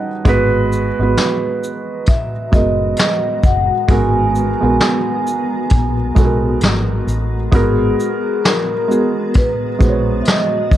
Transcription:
0.00 0.28 F#3 medium
0.00 0.11 G3 medium
0.00 0.27 C#4 medium
0.00 0.28 D#4 medium
0.00 0.27 B4 medium
0.00 0.23 D#5 medium
0.00 0.27 F#5 medium
0.00 0.27 G5 medium
0.00 0.28 A5 medium
0.25 0.90 G#1 loud
0.25 0.85 G#3 loud
0.25 7.49 G#3 medium
0.25 7.49 B3 medium
0.25 0.85 B3 loud
0.25 7.49 F#4 medium
0.25 0.86 F#4 loud
0.25 2.04 B4 medium
0.25 0.87 B4 loud
0.25 7.49 A#5 medium
0.25 kick loud
0.25 closed hi-hat medium
0.72 shaker soft
0.99 1.14 G#1 medium
0.99 2.31 G#3 medium
0.99 2.31 B3 medium
0.99 2.32 F#4 medium
0.99 2.32 B4 medium
1.17 snare loud
1.17 closed hi-hat medium
1.64 shaker soft
2.06 2.55 E5 medium
2.06 kick medium
2.06 closed hi-hat medium
2.52 2.93 F#1 medium
2.52 3.71 G#3 medium
2.52 3.72 B3 medium
2.52 3.72 F#4 medium
2.52 3.73 A#4 medium
2.52 3.47 D#5 loud
2.52 kick loud
2.52 closed hi-hat soft
2.52 shaker soft
2.97 snare loud
2.97 closed hi-hat medium
3.43 3.69 F#1 medium
3.43 3.91 F#5 medium
3.43 kick medium
3.43 closed hi-hat soft
3.43 shaker soft
3.88 4.54 G#1 loud
3.88 4.48 G#3 medium
3.88 4.49 B3 medium
3.88 4.49 F#4 loud
3.88 4.50 A#4 loud
3.88 6.58 G#5 loud
3.88 kick loud
3.88 closed hi-hat medium
4.35 shaker soft
4.61 4.78 A#1 medium
4.61 5.93 G#3 medium
4.61 5.94 B3 medium
4.61 5.94 F#4 medium
4.61 5.95 A#4 medium
4.80 snare loud
4.80 closed hi-hat medium
5.27 shaker soft
5.70 6.11 A#1 medium
5.70 kick medium
5.70 closed hi-hat medium
6.15 6.57 B1 medium
6.15 7.35 G#3 medium
6.15 7.35 B3 medium
6.15 7.36 F#4 medium
6.15 6.25 A4 medium
6.15 kick loud
6.15 closed hi-hat soft
6.15 shaker soft
6.25 7.40 A#4 medium
6.61 7.02 G#1 medium
6.61 snare loud
6.61 closed hi-hat medium
7.07 7.47 A1 medium
7.07 closed hi-hat soft
7.07 shaker soft
7.52 7.93 G#1 loud
7.52 8.71 G#3 loud
7.52 10.77 G#3 medium
7.52 10.77 B3 medium
7.52 8.72 B3 medium
7.52 10.77 F#4 medium
7.52 8.72 F#4 medium
7.52 8.47 G#4 medium
7.52 8.73 A#4 loud
7.52 10.77 A#5 medium
7.52 kick loud
7.52 closed hi-hat medium
8.00 shaker soft
8.44 9.31 A#4 medium
8.44 snare loud
8.44 closed hi-hat medium
8.88 9.68 G#3 medium
8.88 9.69 B3 medium
8.88 9.69 F#4 medium
8.88 9.70 G#4 medium
8.88 shaker soft
9.34 10.24 B4 medium
9.34 kick loud
9.34 closed hi-hat medium
9.79 10.20 A#1 medium
9.79 10.77 G#3 medium
9.79 10.77 B3 medium
9.79 10.77 F#4 medium
9.79 9.89 C5 medium
9.79 kick medium
9.79 shaker soft
9.89 10.77 C#5 medium
10.22 10.26 E5 medium
10.22 closed hi-hat medium
10.27 10.77 D#5 medium
10.27 snare loud
10.71 10.77 F#1 medium
10.71 kick medium
10.71 shaker soft

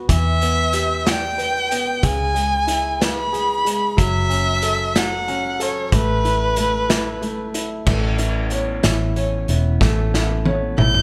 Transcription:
0.00 0.12 B3 medium
0.00 0.12 F#4 soft
0.09 2.00 E2 medium
0.09 1.99 E3 medium
0.09 1.09 E5 loud
0.09 kick medium
0.09 closed hi-hat medium
0.41 1.68 B3 soft
0.41 closed hi-hat soft
0.73 1.99 G4 soft
0.73 closed hi-hat medium
1.05 2.00 D5 soft
1.05 2.06 G5 medium
1.05 snare medium
1.05 closed hi-hat medium
1.38 2.01 B4 soft
1.38 closed hi-hat soft
1.71 2.03 B3 soft
1.71 closed hi-hat medium
2.03 3.94 C#2 medium
2.03 3.94 C#3 medium
2.03 3.04 G#5 loud
2.03 kick medium
2.03 closed hi-hat medium
2.35 3.61 G#3 soft
2.35 closed hi-hat soft
2.67 3.94 E4 medium
2.67 closed hi-hat medium
3.01 3.95 B4 soft
3.01 3.99 B5 medium
3.01 snare medium
3.01 closed hi-hat medium
3.33 3.96 G#4 medium
3.33 closed hi-hat soft
3.65 3.97 G#3 soft
3.65 closed hi-hat medium
3.97 5.89 F#1 medium
3.97 4.94 F#3 medium
3.97 4.99 E5 loud
3.97 kick loud
3.97 closed hi-hat medium
4.30 5.26 C#4 soft
4.30 closed hi-hat soft
4.62 5.58 A4 medium
4.62 closed hi-hat medium
4.95 5.90 F#3 medium
4.95 5.64 F#5 medium
4.95 snare medium
4.95 closed hi-hat medium
5.28 5.91 C#4 medium
5.28 closed hi-hat soft
5.60 5.91 A4 soft
5.60 5.95 C#5 medium
5.60 closed hi-hat medium
5.92 7.83 A1 loud
5.92 6.56 A3 medium
5.92 7.55 B4 loud
5.92 kick medium
5.92 closed hi-hat medium
6.25 6.88 E4 soft
6.25 closed hi-hat soft
6.56 7.20 A3 medium
6.56 closed hi-hat medium
6.89 7.53 E4 medium
6.89 snare loud
6.89 closed hi-hat medium
7.22 7.85 A3 medium
7.22 closed hi-hat soft
7.54 7.86 E4 soft
7.54 closed hi-hat medium
7.86 8.80 A1 medium
7.86 8.18 E3 medium
7.86 9.77 A3 medium
7.86 9.16 C#4 medium
7.86 kick loud
7.86 crash medium
8.18 8.83 E3 medium
8.18 8.82 E4 soft
8.18 closed hi-hat medium
8.50 9.49 B3 medium
8.50 9.15 C#5 medium
8.50 closed hi-hat soft
8.83 9.45 A1 medium
8.83 9.81 E3 medium
8.83 9.48 E4 soft
8.83 snare medium
8.83 closed hi-hat medium
9.16 9.81 C#4 medium
9.16 10.42 C#5 medium
9.16 closed hi-hat soft
9.48 9.79 E1 medium
9.48 10.47 B3 medium
9.48 10.13 E4 soft
9.48 closed hi-hat soft
9.81 10.74 A1 loud
9.81 10.14 E3 medium
9.81 11.02 A3 medium
9.81 11.02 C#4 medium
9.81 kick loud
9.81 snare medium
10.14 10.78 E3 medium
10.14 10.78 E4 soft
10.14 snare medium
10.46 11.02 B3 medium
10.46 11.02 C#5 medium
10.46 high tom medium
10.78 11.02 A1 medium
10.78 11.02 E3 medium
10.78 11.02 E4 soft
10.78 11.02 G6 loud
10.78 mid tom medium
10.95 mid tom medium

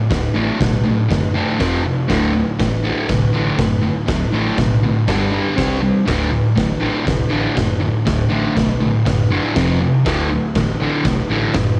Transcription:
0.10 0.26 D1 medium
0.10 0.33 D2 medium
0.10 0.33 A2 medium
0.10 kick loud
0.10 snare loud
0.10 open hi-hat medium
0.34 0.50 A1 medium
0.34 0.58 D2 medium
0.34 0.59 A2 loud
0.34 0.59 D3 medium
0.59 0.91 B1 medium
0.59 0.82 D2 medium
0.59 0.83 A2 medium
0.59 kick loud
0.59 snare loud
0.59 open hi-hat medium
0.85 1.07 D2 medium
0.85 1.08 A2 medium
1.09 1.41 F#1 medium
1.09 1.32 D2 medium
1.09 1.32 A2 medium
1.09 kick loud
1.09 snare loud
1.09 open hi-hat medium
1.34 1.58 D2 medium
1.34 1.58 A2 medium
1.34 1.58 D3 medium
1.59 1.91 F1 medium
1.59 1.83 F2 medium
1.59 1.83 C3 loud
1.59 1.84 F3 loud
1.59 kick loud
1.59 snare loud
1.59 open hi-hat medium
1.84 2.07 F2 medium
1.84 2.07 C3 medium
2.08 2.41 D1 medium
2.08 2.32 D2 medium
2.08 2.33 A2 loud
2.08 2.33 D3 loud
2.08 kick loud
2.08 snare loud
2.08 open hi-hat medium
2.33 2.56 D2 medium
2.33 2.57 A2 medium
2.59 2.90 A1 medium
2.59 2.82 D2 medium
2.59 2.82 A2 medium
2.59 kick loud
2.59 snare loud
2.59 open hi-hat medium
2.84 3.07 D2 medium
2.84 3.08 A2 loud
2.84 3.08 D3 loud
3.09 3.24 C2 medium
3.09 3.32 D2 medium
3.09 3.32 A2 medium
3.09 kick loud
3.09 snare loud
3.09 open hi-hat medium
3.33 3.49 A1 medium
3.33 3.57 D2 medium
3.33 3.57 A2 medium
3.33 3.58 D3 medium
3.58 3.89 F#1 loud
3.58 3.81 D2 medium
3.58 3.81 A2 medium
3.58 kick loud
3.58 snare loud
3.58 open hi-hat medium
3.82 4.05 D2 medium
3.82 4.06 A2 medium
4.07 4.24 D1 medium
4.07 4.30 D2 medium
4.07 4.30 A2 medium
4.07 kick loud
4.07 snare loud
4.07 open hi-hat medium
4.33 4.48 A1 medium
4.33 4.57 D2 medium
4.33 4.57 A2 loud
4.33 4.57 D3 medium
4.58 4.89 B1 medium
4.58 4.80 D2 medium
4.58 4.81 A2 medium
4.58 kick loud
4.58 snare loud
4.58 open hi-hat medium
4.83 5.06 D2 medium
4.83 5.06 A2 medium
5.07 5.39 G1 medium
5.07 5.31 G2 medium
5.07 5.31 D3 loud
5.07 5.32 G3 loud
5.07 kick loud
5.07 snare loud
5.07 open hi-hat medium
5.32 5.55 G2 medium
5.32 5.56 D3 medium
5.32 5.55 G3 medium
5.56 5.89 C2 medium
5.56 5.80 C3 medium
5.56 5.80 G3 medium
5.56 5.81 C4 medium
5.56 kick loud
5.56 snare loud
5.56 open hi-hat medium
5.81 6.05 C3 medium
5.81 6.05 G3 medium
6.06 6.38 D1 medium
6.06 6.30 D2 medium
6.06 6.30 A2 loud
6.06 6.31 D3 medium
6.06 kick loud
6.06 snare loud
6.06 open hi-hat medium
6.31 6.54 D2 medium
6.31 6.54 A2 medium
6.56 6.88 A1 medium
6.56 6.79 D2 medium
6.56 6.79 A2 medium
6.56 kick loud
6.56 snare medium
6.56 open hi-hat soft
6.80 7.04 D2 medium
6.80 7.04 A2 medium
6.80 7.05 D3 loud
7.05 7.22 C2 medium
7.05 7.28 D2 medium
7.05 7.29 A2 medium
7.05 kick loud
7.05 snare loud
7.05 open hi-hat medium
7.29 7.46 A1 medium
7.29 7.54 D2 loud
7.29 7.54 A2 medium
7.29 7.55 D3 medium
7.55 7.88 F#1 medium
7.55 7.78 D2 medium
7.55 7.79 A2 medium
7.55 kick loud
7.55 snare loud
7.55 open hi-hat medium
7.80 8.03 D2 medium
7.80 8.04 A2 medium
8.05 8.22 D1 medium
8.05 8.28 D2 medium
8.05 8.29 A2 medium
8.05 kick loud
8.05 snare loud
8.05 open hi-hat medium
8.29 8.47 A1 medium
8.29 8.54 D2 medium
8.29 8.54 A2 medium
8.29 8.54 D3 medium
8.55 8.87 B1 medium
8.55 8.78 D2 medium
8.55 8.79 A2 medium
8.55 kick medium
8.55 snare loud
8.55 open hi-hat medium
8.80 9.03 D2 medium
8.80 9.04 A2 medium
9.05 9.37 F#1 medium
9.05 9.28 D2 medium
9.05 9.28 A2 medium
9.05 kick loud
9.05 snare loud
9.05 open hi-hat medium
9.30 9.54 D2 medium
9.30 9.55 A2 medium
9.30 9.55 D3 medium
9.56 9.87 F1 loud
9.56 9.79 F2 loud
9.56 9.79 C3 medium
9.56 9.80 F3 loud
9.56 kick loud
9.56 snare loud
9.56 open hi-hat medium
9.80 10.03 F2 medium
9.80 10.03 C3 medium
10.05 10.36 D1 medium
10.05 10.29 D2 medium
10.05 10.29 A2 loud
10.05 10.29 D3 loud
10.05 kick loud
10.05 snare loud
10.05 open hi-hat medium
10.30 10.53 D2 medium
10.30 10.53 A2 medium
10.55 10.86 A1 loud
10.55 10.78 D2 medium
10.55 10.78 A2 medium
10.55 kick medium
10.55 snare loud
10.55 open hi-hat medium
10.80 11.04 D2 medium
10.80 11.05 A2 medium
10.80 11.05 D3 medium
11.05 11.20 C2 medium
11.05 11.28 D2 medium
11.05 11.28 A2 medium
11.05 kick loud
11.05 snare loud
11.05 open hi-hat medium
11.30 11.45 A1 medium
11.30 11.54 D2 medium
11.30 11.54 A2 loud
11.30 11.54 D3 loud
11.54 11.80 F#1 medium
11.54 11.78 D2 medium
11.54 11.78 A2 medium
11.54 kick loud
11.54 snare loud
11.54 open hi-hat medium

